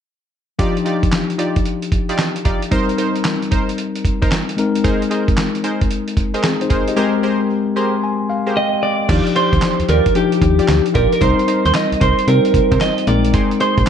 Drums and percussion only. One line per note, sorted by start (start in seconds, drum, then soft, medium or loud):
0.59 kick loud
0.59 closed hi-hat medium
0.77 closed hi-hat soft
0.86 closed hi-hat medium
1.03 kick medium
1.03 closed hi-hat medium
1.12 snare loud
1.12 clap medium
1.12 closed hi-hat medium
1.30 closed hi-hat soft
1.39 closed hi-hat medium
1.56 kick medium
1.56 closed hi-hat soft
1.66 closed hi-hat medium
1.82 closed hi-hat soft
1.92 kick medium
1.92 closed hi-hat medium
2.09 closed hi-hat soft
2.18 snare loud
2.18 clap medium
2.18 closed hi-hat medium
2.36 closed hi-hat soft
2.45 kick medium
2.45 closed hi-hat medium
2.62 closed hi-hat medium
2.72 kick loud
2.72 closed hi-hat medium
2.89 closed hi-hat soft
2.98 closed hi-hat medium
3.16 closed hi-hat soft
3.25 snare loud
3.25 clap medium
3.25 closed hi-hat medium
3.42 closed hi-hat medium
3.52 kick medium
3.52 closed hi-hat medium
3.69 closed hi-hat soft
3.78 closed hi-hat medium
3.96 closed hi-hat medium
4.05 kick medium
4.05 closed hi-hat medium
4.22 kick medium
4.22 closed hi-hat soft
4.32 snare loud
4.32 clap medium
4.32 closed hi-hat medium
4.49 closed hi-hat soft
4.58 closed hi-hat medium
4.75 closed hi-hat medium
4.85 kick loud
4.85 closed hi-hat medium
5.02 closed hi-hat soft
5.11 closed hi-hat medium
5.28 kick medium
5.28 closed hi-hat medium
5.37 snare loud
5.37 clap medium
5.37 closed hi-hat medium
5.55 closed hi-hat soft
5.64 closed hi-hat medium
5.81 kick medium
5.81 closed hi-hat medium
5.91 closed hi-hat medium
6.08 closed hi-hat soft
6.17 kick medium
6.17 closed hi-hat medium
6.34 closed hi-hat soft
6.43 snare loud
6.43 clap medium
6.43 closed hi-hat medium
6.61 closed hi-hat soft
6.70 kick medium
6.70 closed hi-hat medium
6.88 closed hi-hat medium
9.09 kick loud
9.09 closed hi-hat medium
9.09 crash medium
9.27 closed hi-hat soft
9.36 closed hi-hat medium
9.53 kick medium
9.53 closed hi-hat medium
9.62 snare loud
9.62 clap medium
9.62 closed hi-hat medium
9.80 closed hi-hat soft
9.89 closed hi-hat medium
10.06 kick medium
10.06 closed hi-hat medium
10.15 closed hi-hat medium
10.32 closed hi-hat soft
10.42 kick medium
10.42 closed hi-hat medium
10.59 closed hi-hat medium
10.68 snare loud
10.68 clap medium
10.68 closed hi-hat medium
10.86 closed hi-hat soft
10.95 kick medium
10.95 closed hi-hat medium
11.13 closed hi-hat medium
11.22 kick loud
11.22 closed hi-hat medium
11.39 closed hi-hat soft
11.48 closed hi-hat medium
11.66 closed hi-hat medium
11.74 snare loud
11.74 clap medium
11.74 closed hi-hat medium
11.92 closed hi-hat soft
12.01 kick loud
12.01 closed hi-hat medium
12.19 closed hi-hat soft
12.28 closed hi-hat medium
12.45 closed hi-hat soft
12.54 kick medium
12.54 closed hi-hat medium
12.72 kick medium
12.72 closed hi-hat medium
12.81 snare loud
12.81 clap medium
12.81 closed hi-hat medium
12.98 closed hi-hat medium
13.07 closed hi-hat medium
13.25 closed hi-hat medium
13.34 kick loud
13.34 closed hi-hat medium
13.51 closed hi-hat soft
13.60 closed hi-hat medium
13.78 kick medium
13.78 closed hi-hat medium